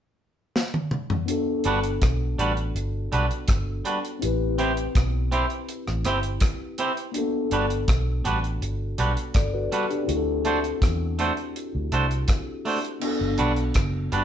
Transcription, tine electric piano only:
1.26 4.16 B3 medium
1.26 4.17 D4 medium
1.26 4.18 F#4 medium
1.31 4.19 A4 medium
4.19 7.10 C4 medium
4.19 7.11 E4 medium
4.19 7.11 G4 medium
4.25 7.13 B4 medium
7.12 7.20 A#3 soft
7.12 9.30 D4 medium
7.16 10.06 B3 medium
7.16 9.32 F#4 medium
7.16 9.33 A4 medium
9.34 9.53 A4 medium
9.34 9.52 D5 medium
9.54 9.89 F#4 medium
9.54 9.88 B4 medium
9.90 10.25 D4 medium
9.90 10.25 G4 medium
10.04 12.96 C4 medium
10.04 12.97 E4 medium
10.08 12.98 F#4 medium
10.08 10.16 G#4 medium
10.17 13.02 A4 medium
13.00 14.24 B3 medium
13.00 14.24 D4 medium
13.04 14.24 F#4 medium
13.04 14.24 A4 medium

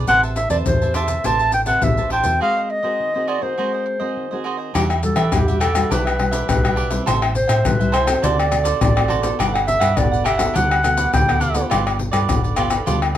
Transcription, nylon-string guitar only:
0.07 0.63 A3 soft
0.07 0.35 C4 medium
0.07 0.36 B4 medium
0.49 0.75 C4 medium
0.49 0.76 G4 medium
0.49 0.76 B4 medium
0.66 1.22 E3 medium
0.82 1.21 C4 soft
0.82 1.21 G4 medium
0.82 1.21 B4 medium
1.24 1.80 A3 medium
1.24 1.52 C4 medium
1.24 1.52 G4 medium
1.24 1.52 B4 medium
1.66 1.92 C4 medium
1.66 1.92 G4 medium
1.66 1.92 B4 medium
1.83 2.38 E3 soft
1.98 2.23 C4 medium
1.98 2.23 G4 medium
1.98 2.23 B4 medium
2.25 2.80 C4 medium
2.25 2.80 F#4 medium
2.25 2.80 A#4 medium
2.41 2.97 G#3 medium
2.83 3.09 C4 medium
2.83 3.09 F#4 medium
2.83 3.09 A#4 medium
3.00 3.55 D#3 medium
3.15 3.39 C4 medium
3.15 3.40 F#4 soft
3.15 3.40 A#4 medium
3.42 3.53 C4 medium
3.42 3.53 F#4 medium
3.42 3.53 A#4 medium
3.58 4.14 G#3 medium
3.58 3.97 C4 medium
3.58 3.98 F#4 soft
3.58 3.98 A#4 medium
4.00 4.25 C4 medium
4.00 4.26 F#4 medium
4.00 4.26 A#4 medium
4.17 4.72 D#3 soft
4.32 4.70 C4 medium
4.32 4.71 F#4 medium
4.32 4.71 A#4 medium
4.75 5.30 E3 medium
4.75 4.92 G3 medium
4.75 4.92 D4 medium
4.75 4.92 F#4 medium
5.03 5.21 G3 medium
5.03 5.21 D4 medium
5.03 5.21 F#4 medium
5.34 5.88 B2 medium
5.34 5.42 G3 medium
5.34 5.42 D4 medium
5.34 5.42 F#4 medium
5.49 5.72 G3 medium
5.49 5.73 D4 medium
5.49 5.73 F#4 medium
5.75 6.15 G3 medium
5.75 6.15 D4 medium
5.75 6.15 F#4 medium
5.92 6.47 E3 medium
6.20 6.59 G3 soft
6.20 6.59 D4 soft
6.20 6.59 F#4 medium
6.49 7.04 B2 medium
6.64 6.88 G3 medium
6.64 6.88 D4 medium
6.64 6.89 F#4 medium
6.91 7.31 G3 medium
6.91 7.31 C4 medium
6.91 7.31 E4 medium
7.07 7.62 A2 medium
7.65 8.21 E3 medium
7.65 7.75 G3 soft
7.65 7.75 C4 medium
7.65 7.76 E4 medium
7.80 8.04 G3 medium
7.80 8.05 C4 medium
7.80 8.05 E4 medium
8.06 8.47 C4 medium
8.06 8.47 F#4 medium
8.06 8.47 A4 medium
8.23 8.78 D3 medium
8.52 8.91 C4 medium
8.52 8.91 F#4 medium
8.52 8.91 A4 medium
8.81 9.36 A2 medium
8.97 9.21 C4 medium
8.97 9.21 F#4 medium
8.97 9.21 A4 medium
9.23 9.77 B3 medium
9.23 9.78 F#4 medium
9.23 9.78 A4 medium
9.39 9.95 G3 medium
9.97 10.53 D3 medium
9.97 10.25 B3 medium
9.97 10.25 F#4 medium
9.97 10.25 A4 medium
10.39 10.79 B3 medium
10.39 10.79 F#4 medium
10.39 10.80 A4 medium
10.56 11.11 G3 medium
10.84 11.23 B3 medium
10.84 11.24 F#4 medium
10.84 11.24 A4 medium
11.14 11.69 D3 medium
11.29 11.53 B3 medium
11.29 11.53 F#4 medium
11.29 11.54 A4 medium
11.55 12.10 B3 medium
11.55 12.10 F4 medium
11.55 12.10 A4 medium
11.71 12.27 G3 medium
12.13 12.53 B3 medium
12.13 12.53 F4 medium
12.13 12.53 A4 medium
12.30 12.85 D3 medium
12.57 12.75 B3 medium
12.57 12.75 F4 medium
12.57 12.76 A4 medium
12.87 13.18 G3 medium
12.87 13.12 B3 medium
12.87 13.12 F4 medium
12.87 13.12 A4 medium

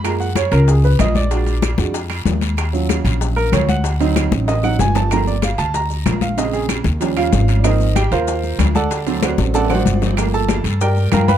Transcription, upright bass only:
0.00 0.46 F#2 medium
0.52 0.96 C#2 loud
1.00 1.73 A#1 loud
1.78 2.23 F2 loud
2.25 3.00 D#2 medium
3.04 3.49 A#1 loud
3.52 4.26 D2 medium
4.32 4.76 A1 loud
4.79 5.53 G1 loud
5.58 6.03 D2 medium
6.06 6.80 A#1 medium
6.85 7.29 D#2 loud
7.33 8.06 G#1 loud
8.11 8.56 D#2 medium
8.59 9.32 D2 medium
9.38 9.82 A1 medium
9.86 10.59 G1 medium
10.64 11.09 G2 medium
11.12 11.38 G2 loud

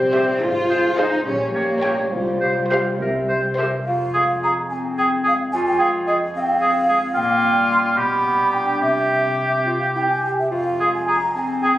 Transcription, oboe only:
0.15 0.24 C5 soft
0.70 0.79 C5 soft
0.97 1.07 C5 soft
1.55 1.65 C#5 soft
1.83 1.93 C#5 soft
2.40 2.51 C5 soft
2.69 2.80 C5 soft
3.29 3.39 C5 soft
3.58 3.68 C5 soft
4.14 4.24 G#4 soft
4.43 4.53 G#4 soft
4.98 5.08 G#4 soft
5.24 5.34 G#4 soft
5.79 5.89 G#4 medium
6.07 6.17 G#4 soft
6.61 6.71 G#4 medium
6.89 6.98 G#4 medium
7.14 7.99 F4 medium
7.98 8.81 G4 medium
8.82 10.21 G4 soft
10.80 10.90 G#4 soft
11.08 11.17 G#4 soft
11.63 11.73 G#4 soft

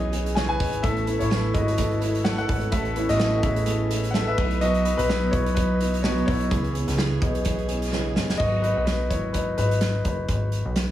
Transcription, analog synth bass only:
0.00 0.62 B1 medium
0.60 0.82 G#1 medium
0.84 1.18 A1 loud
1.21 1.53 A1 loud
1.54 2.45 G#1 loud
2.49 2.71 G#1 medium
2.72 3.07 A1 medium
3.09 3.41 A1 loud
3.43 4.34 A1 medium
4.38 4.95 B1 medium
4.98 5.30 B1 medium
5.33 6.23 B1 medium
6.28 6.50 B1 medium
6.52 6.85 C#2 medium
6.88 7.19 C#2 loud
7.22 8.18 B1 medium
8.16 8.38 F#1 medium
8.40 8.74 G#1 loud
8.77 9.12 B1 medium
9.11 9.55 G#1 medium
9.58 10.02 G#1 medium
10.05 10.27 F#1 medium
10.29 10.63 G#1 loud
10.65 10.91 B1 medium

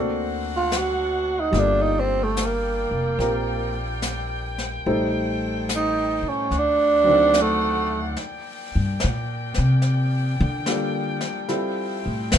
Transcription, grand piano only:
0.00 1.51 A#3 medium
0.00 1.53 C4 medium
0.00 1.53 D4 medium
0.00 1.56 F#4 medium
0.00 1.55 A4 medium
1.51 4.84 G3 medium
1.51 4.85 A#3 soft
1.51 4.86 D4 soft
1.55 3.18 F4 soft
1.55 4.86 A4 medium
3.19 4.85 C4 soft
3.19 4.86 F4 soft
3.19 4.86 G4 soft
3.19 4.86 A#4 soft
4.86 6.52 G3 soft
4.86 6.52 A3 soft
4.86 6.52 D#4 medium
4.86 6.53 A4 medium
4.86 6.52 C5 soft
7.04 8.17 F#3 medium
7.04 8.18 C4 medium
7.04 8.19 D4 soft
7.08 8.19 D#3 medium
7.08 8.20 A4 medium
10.67 11.48 G3 soft
10.67 11.50 A#3 soft
10.67 11.50 D4 soft
10.67 11.47 F4 soft
10.67 11.49 A4 medium
11.49 11.98 G3 soft
11.49 11.98 C4 soft
11.49 11.98 E4 soft
11.49 11.98 F4 soft
11.49 11.99 A4 medium

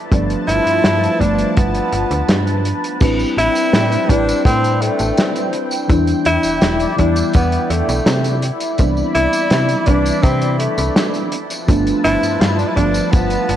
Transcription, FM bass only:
0.12 0.36 G1 loud
0.48 0.60 G1 medium
0.66 0.81 G2 soft
0.84 1.08 G2 medium
1.21 1.44 G1 medium
1.57 1.81 G1 medium
1.93 2.05 G1 medium
2.11 2.23 D2 medium
2.29 2.73 G2 loud
3.01 3.25 A1 medium
3.37 3.49 A1 medium
3.73 3.97 A2 medium
4.09 4.33 A1 medium
4.45 4.90 A2 medium
5.00 5.12 A1 medium
5.89 6.14 E2 loud
6.26 6.38 E2 medium
6.44 6.59 E1 soft
6.62 6.86 E1 medium
6.99 7.23 E2 medium
7.35 7.58 E2 medium
7.70 7.82 E2 medium
7.89 8.01 B1 medium
8.06 8.51 C3 loud
8.79 9.03 C2 loud
9.15 9.27 C2 medium
9.51 9.75 C3 medium
9.88 10.11 C2 medium
10.23 10.68 C3 medium
10.78 10.90 C2 medium
11.68 11.92 G1 loud
12.05 12.17 G1 medium
12.23 12.37 G2 soft
12.41 12.65 G2 medium
12.77 13.01 G1 medium
13.13 13.37 G1 medium
13.49 13.56 G1 medium

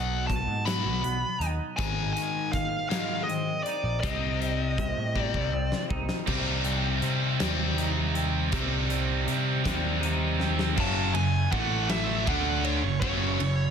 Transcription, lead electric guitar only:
0.00 0.27 F#5 loud
0.27 0.67 A5 medium
0.65 1.46 B5 loud
1.77 2.12 G#5 medium
2.13 2.49 G#5 loud
2.52 2.88 F5 medium
2.89 3.23 F5 medium
3.24 3.63 D#5 medium
3.63 4.00 D5 medium
4.00 5.18 D#5 medium
5.18 5.85 D5 medium
10.80 11.14 A5 loud
11.15 11.51 G#5 loud
11.52 11.90 F#5 medium
11.90 12.28 E5 medium
12.28 12.66 F#5 medium
12.65 13.00 C#5 medium
13.01 13.70 C#5 medium

